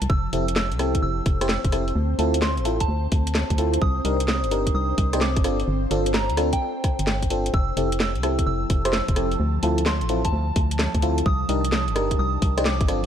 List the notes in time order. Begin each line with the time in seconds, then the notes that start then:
Already playing: F3 A5
0.02 C2, closed hi-hat
0.10 F1 C4 C5 E6, kick
0.33 F1 C4 E4 G4 A4, open hi-hat
0.48 closed hi-hat
0.56 E6, snare
0.72 C2, closed hi-hat
0.79 C4 E4 G4 A4, cross-stick, open hi-hat
0.95 kick, closed hi-hat
1.03 F1 E6
1.26 F1, kick, open hi-hat
1.41 C4 E4 G4 C5, cross-stick, closed hi-hat
1.49 E6, snare
1.65 F1, kick, closed hi-hat
1.72 C4 E4 G4 A4, cross-stick, open hi-hat
1.88 open hi-hat
1.96 D2
2.19 D2 C4 E4 F4 A4, open hi-hat
2.34 closed hi-hat
2.42 C6, snare
2.57 A1, closed hi-hat
2.65 C4 E4 F4 A4, open hi-hat
2.80 A5, kick, closed hi-hat
2.88 D2
3.12 D2, kick, open hi-hat
3.27 closed hi-hat
3.35 snare
3.50 D2, kick, closed hi-hat
3.58 C4 E4 F4 A4, open hi-hat
3.74 closed hi-hat
3.82 C2 D#6, kick
4.05 C2 D4 D#4 G4 A#4, open hi-hat
4.20 closed hi-hat
4.28 D#6, snare
4.43 G1, closed hi-hat
4.51 D4 D#4 G4 A#4, open hi-hat
4.67 kick, closed hi-hat
4.75 C2 D#6
4.98 C2, kick, open hi-hat
5.13 D4 D#4 G4 C5, cross-stick, closed hi-hat
5.21 D6, snare
5.36 G1, kick, closed hi-hat
5.44 C4 D4 F4 A4, cross-stick, open hi-hat
5.60 open hi-hat
5.68 G1
5.91 G1 C4 D4 F4 A4, open hi-hat
6.06 closed hi-hat
6.14 A#5, snare, closed hi-hat
6.29 D2, closed hi-hat
6.37 C4 D4 F4 A4, cross-stick, open hi-hat
6.53 G5, kick, closed hi-hat
6.84 kick, cross-stick, open hi-hat
6.99 G1, closed hi-hat
7.07 snare
7.23 kick, closed hi-hat
7.30 C4 D4 F4 A4, open hi-hat
7.46 closed hi-hat
7.54 F1 F3 A5 E6, kick
7.77 F1 C4 E4 G4 A4, open hi-hat
7.92 closed hi-hat
8.00 E6, snare
8.15 C2, closed hi-hat
8.23 C4 E4 G4 A4, cross-stick, open hi-hat
8.39 kick, closed hi-hat
8.47 F1 E6
8.70 F1, kick, open hi-hat
8.85 C4 E4 G4 C5, cross-stick, closed hi-hat
8.93 E6, snare
9.08 F1, kick, closed hi-hat
9.16 C4 E4 G4 A4, cross-stick, open hi-hat
9.32 open hi-hat
9.40 D2
9.63 D2 C4 E4 F4 A4, open hi-hat
9.78 closed hi-hat
9.86 C6, snare
10.01 A1, closed hi-hat
10.09 C4 E4 F4 A4, open hi-hat
10.25 A5, kick, closed hi-hat
10.33 D2
10.56 D2, kick, open hi-hat
10.71 closed hi-hat
10.79 snare
10.95 D2, kick, closed hi-hat
11.02 C4 E4 F4 A4, open hi-hat
11.18 closed hi-hat
11.26 C2 D#6, kick
11.49 C2 D4 D#4 G4 A#4, open hi-hat
11.65 closed hi-hat
11.72 D#6, snare
11.88 G1, closed hi-hat
11.96 D4 D#4 G4 A#4, cross-stick, open hi-hat
12.11 kick, closed hi-hat
12.19 C2 D#6
12.42 C2, kick, open hi-hat
12.57 D4 D#4 G4 C5, cross-stick, closed hi-hat
12.65 D6, snare
12.81 G1, kick, closed hi-hat
12.88 C4 D4 F4 A4, cross-stick, open hi-hat